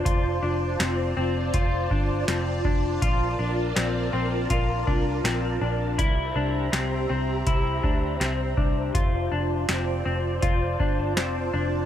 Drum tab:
HH |x-x-x-x-|x-x-x-x-|x-x-x-x-|x-x-x-x-|
SD |--o---o-|--o---o-|--o---o-|--o---o-|
BD |o---oo-o|o---oo--|o---oo-o|o---oo--|